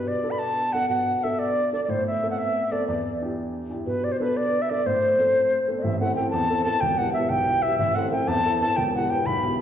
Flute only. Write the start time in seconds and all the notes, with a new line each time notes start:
0.08 D5
0.31 B5
0.39 A5
0.73 F#5
0.89 F#5
1.23 E5
1.39 D5
1.73 D5
1.84 D5
1.90 C5
2.07 E5
2.30 F#5
2.38 E5
2.72 D5
2.88 D5
3.87 B4
4.04 D5
4.12 C5
4.20 B4
4.37 D5
4.62 E5
4.70 D5
4.86 C5
5.78 D5
5.83 E5
6.00 F#5
6.15 G5
6.30 A5
6.64 A5
6.81 G5
6.98 F#5
7.13 E5
7.29 G5
7.62 E5
7.79 E5
7.95 F#5
8.12 G5
8.28 A5
8.61 A5
8.76 G5
8.95 F#5
9.10 G5
9.26 B5